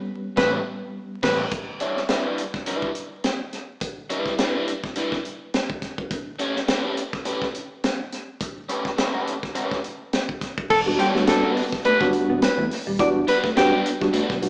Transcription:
Already playing: tine electric piano G3 B3 C#4
0.37 fingered electric bass A1, overdriven electric guitar A3 C#4 G4 B4, tenor saxophone B4, kick, snare
1.23 fingered electric bass A1, overdriven electric guitar A3 C#4 G4 B4, tenor saxophone B4, kick, snare, crash
1.51 kick, closed hi-hat
1.80 overdriven electric guitar G3 D4 E4 C#5, closed hi-hat
1.97 snare
2.08 overdriven electric guitar G3 D4 E4 B4, snare, closed hi-hat
2.26 overdriven electric guitar G3 D4 E4 B4
2.38 closed hi-hat
2.54 kick, snare
2.66 overdriven electric guitar G3 D4 E4 B4, closed hi-hat
2.82 kick
2.95 closed hi-hat
3.24 snare, closed hi-hat
3.53 snare, closed hi-hat
3.81 kick, closed hi-hat
4.10 overdriven electric guitar G3 D4 E4 B4, closed hi-hat
4.26 kick, snare
4.38 overdriven electric guitar G3 D4 E4 B4, snare, closed hi-hat
4.55 overdriven electric guitar G3 D4 E4 B4
4.68 closed hi-hat
4.84 kick, snare
4.95 overdriven electric guitar G3 D4 E4 B4, closed hi-hat
5.12 kick, snare
5.25 closed hi-hat
5.54 snare, closed hi-hat
5.70 kick
5.82 kick, snare, closed hi-hat
5.98 kick
6.11 kick, closed hi-hat
6.39 overdriven electric guitar A3 C#4 G4 C#5, closed hi-hat
6.56 snare
6.68 overdriven electric guitar A3 C#4 G4 B4, snare, closed hi-hat
6.84 overdriven electric guitar A3 C#4 G4 B4
6.97 closed hi-hat
7.13 kick, snare
7.25 overdriven electric guitar A3 C#4 G4 B4, closed hi-hat
7.42 kick, snare
7.54 closed hi-hat
7.84 snare, closed hi-hat
8.12 snare, closed hi-hat
8.41 kick, closed hi-hat
8.69 overdriven electric guitar A3 C#4 G4 B4, closed hi-hat
8.85 kick, snare
8.97 overdriven electric guitar A3 C#4 G4 B4, snare, closed hi-hat
9.14 overdriven electric guitar A3 C#4 G4 B4
9.27 closed hi-hat
9.43 kick, snare
9.55 overdriven electric guitar A3 C#4 G4 B4, closed hi-hat
9.71 kick, snare
9.84 closed hi-hat
10.13 snare, closed hi-hat
10.29 kick
10.41 kick, snare, closed hi-hat
10.58 kick
10.70 fingered electric bass E1, tenor saxophone A4, kick, crash
10.86 tine electric piano G3 B3 D4 F#4, muted clean electric guitar stroke
10.98 clean electric guitar G3, overdriven electric guitar B3 D4 G4 C#5, tenor saxophone G4, closed hi-hat
11.14 tine electric piano G3 B3 D4 F#4, clean electric guitar A3, muted fingered electric bass stroke, snare
11.27 overdriven electric guitar B3 D4 G4 B4, tenor saxophone A4, snare, closed hi-hat
11.44 overdriven electric guitar B3 D4 G4 B4
11.57 clean electric guitar B3, open hi-hat
11.72 kick, snare
11.85 clean electric guitar A3, overdriven electric guitar B3 D4 G4 B4, tenor saxophone B4, closed hi-hat
12.00 fingered electric bass G1, tine electric piano F#3 B3 D4 F#4, muted clean electric guitar stroke, kick, snare
12.07 tine electric piano G3
12.13 closed hi-hat
12.29 fingered electric bass E1, clean electric guitar B3
12.42 tenor saxophone B4, snare, closed hi-hat
12.58 fingered electric bass E2, clean electric guitar A3
12.71 muted clean electric guitar stroke, snare, open hi-hat
12.87 fingered electric bass D#1, clean electric guitar G3
12.99 fingered electric bass E1, clean electric guitar E3, tine electric piano G3 B3 D4 F#4, tenor saxophone D5, kick, closed hi-hat
13.28 overdriven electric guitar B3 D4 G4 B4, tenor saxophone B4, muted clean electric guitar stroke, closed hi-hat
13.44 clean electric guitar A3, muted fingered electric bass stroke, kick, snare
13.56 tine electric piano G3 B3 D4 F#4, overdriven electric guitar B3 D4 G4 B4, tenor saxophone G4, snare, closed hi-hat
13.72 clean electric guitar G3, overdriven electric guitar B3 D4 G4 B4
13.86 muted clean electric guitar stroke, closed hi-hat
14.01 tine electric piano G3 B3 D4 F#4, clean electric guitar G3, kick, snare
14.13 clean electric guitar A3, overdriven electric guitar B3 D4 G4 B4, muted fingered electric bass stroke, closed hi-hat
14.30 fingered electric bass B1, kick, snare
14.42 tine electric piano G3 B3 D4 F#4, muted clean electric guitar stroke, closed hi-hat

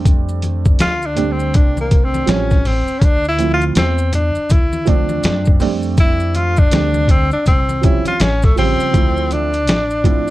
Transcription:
Already playing: upright bass F2, upright piano G3 A3 C4 D4
0.05 kick, closed hi-hat, maracas
0.29 maracas
0.42 closed hi-hat, high conga, maracas
0.65 kick, maracas
0.79 upright bass D2, tenor saxophone F4, snare, closed hi-hat, maracas
1.02 tenor saxophone D4, maracas
1.15 upright piano G3 A3 C4 D4, closed hi-hat, low conga, maracas
1.32 tenor saxophone C4
1.40 maracas
1.54 upright bass C2, tenor saxophone D4, kick, closed hi-hat, low conga, maracas
1.77 tenor saxophone A#3, high conga, maracas
1.91 kick, closed hi-hat, maracas
2.04 tenor saxophone C4
2.14 high conga, maracas
2.26 upright bass A1, upright piano F3 G3 C4 C#4, tenor saxophone C#4, snare, closed hi-hat, maracas
2.51 kick, snare, maracas
2.65 tenor saxophone C4, open hi-hat, low conga, maracas
2.88 maracas
2.99 upright bass D2, tenor saxophone C#4, kick, closed hi-hat, maracas
3.04 tenor saxophone D4
3.24 maracas
3.29 tenor saxophone E4
3.37 upright piano E3 A3 C4 E4, closed hi-hat, high conga, maracas
3.44 upright piano F3
3.54 tenor saxophone F4
3.61 maracas
3.75 upright bass E2, tenor saxophone C4, snare, closed hi-hat, maracas
3.98 maracas
4.13 tenor saxophone D4, closed hi-hat, low conga, maracas
4.35 muted upright bass stroke, maracas
4.50 upright bass D2, tenor saxophone E4, kick, closed hi-hat, low conga, maracas
4.73 high conga, maracas
4.85 upright piano F3 A3 C4 D4, tenor saxophone D4, kick, closed hi-hat, maracas
5.09 high conga, maracas
5.23 upright bass F#2, snare, closed hi-hat, maracas
5.45 kick, maracas
5.59 upright bass F2, upright piano G3 A3 C4 D4, open hi-hat, low conga, maracas
5.83 maracas
5.97 tenor saxophone E4, kick, closed hi-hat, maracas
6.20 maracas
6.35 tenor saxophone F4, closed hi-hat, high conga, maracas
6.57 tenor saxophone D4, kick, maracas
6.71 upright bass D2, upright piano G3 A3 C4 D4, snare, closed hi-hat, maracas
6.94 high conga, maracas
7.08 tenor saxophone C4, kick, closed hi-hat, low conga, maracas
7.31 tenor saxophone D4, muted upright bass stroke, maracas
7.46 upright bass C2, tenor saxophone C4, kick, closed hi-hat, high conga, low conga, maracas
7.69 high conga, maracas
7.81 upright piano F3 G3 C4 C#4, tenor saxophone E4, kick, closed hi-hat, maracas
8.05 tenor saxophone F4, muted upright bass stroke, closed hi-hat, high conga, maracas
8.20 upright bass A1, tenor saxophone C#4, snare, closed hi-hat, maracas
8.42 tenor saxophone A3, kick, snare, maracas
8.56 upright piano C#3 F3 G3 C4, tenor saxophone C4, open hi-hat, low conga, maracas
8.80 maracas
8.93 upright bass D2, upright piano F3 A3 C4 E4, kick, closed hi-hat, maracas
9.17 maracas
9.31 tenor saxophone D4, closed hi-hat, high conga, maracas
9.53 closed hi-hat, maracas
9.67 upright bass A1, snare, closed hi-hat, maracas
9.91 maracas
10.04 upright piano F3 A3 C4 E4, tenor saxophone D4, kick, closed hi-hat, low conga, maracas

